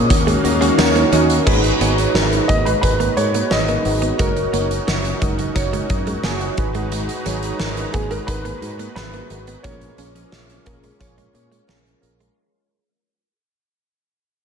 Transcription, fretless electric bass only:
Already playing: A#2
0.10 D#2
0.44 D#2
0.78 D#2
1.12 D#2
1.47 G#1
1.80 G#1
2.14 G#1
2.49 G#1
2.83 G#1
3.17 G#2
3.51 G#1
3.85 G#1
4.19 F#1
4.53 F#1
4.87 F#1
5.22 F#1
5.56 F#1
5.90 F#2
6.24 F#1
6.58 G#1
7.26 G#1
7.60 G#1
7.94 G#1
8.28 G#1
8.62 G#2
8.96 G#1
9.30 G#1
9.64 A#1
9.98 A#1
10.32 A#1
10.67 A#1
11.00 A#1
11.35 A#2
11.69 A#1
12.03 A#1

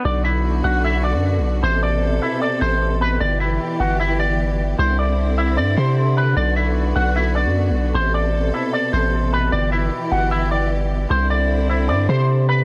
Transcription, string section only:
0.05 B2 D3 F#4
1.63 C3 A4
3.21 E3 G4
4.79 D3 C4 E4
6.37 B3 F#4
7.95 B2 C3 A4
9.53 E3 G4
11.10 D3 C4 E4

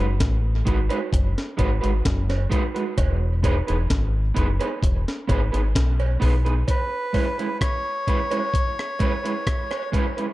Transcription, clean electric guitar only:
0.65 G#3 D#4 F#4 B4
0.89 G#3 D#4 F#4 B4
1.57 G#3 D#4 F#4 B4
1.81 G#3 D#4 F#4 B4
2.50 G#3 D#4 F#4 B4
2.74 G#3 D#4 F#4 B4
3.43 B3 D#4 G#4 B4
3.67 B3 D#4 G#4 B4
4.34 B3 D#4 G#4 B4
4.60 B3 D#4 G#4 B4
5.27 B3 D#4 G#4 B4
5.52 B3 D#4 G#4 B4
6.20 B3 D#4 G#4 B4
6.45 B3 D#4 G#4 B4
7.13 G#3 C#4 E4 B4
7.38 G#3 C#4 E4 B4
8.07 G#3 C#4 E4 B4
8.31 G#3 C#4 E4 B4
9.00 G#3 C#4 E4 B4
9.24 G#3 C#4 E4 B4
9.92 G#3 C#4 E4 B4
10.17 G#3 C#4 E4 B4

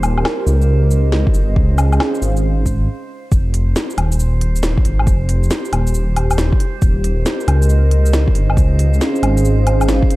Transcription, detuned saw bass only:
Already playing: D#1
0.47 C#2
1.34 G1
1.56 C#2
2.22 G#1
3.31 F1
3.98 D#1
4.85 G#1
5.07 F1
5.73 D#1
6.82 D#1
7.48 C#2
8.35 G1
8.57 C#2
9.23 G#1

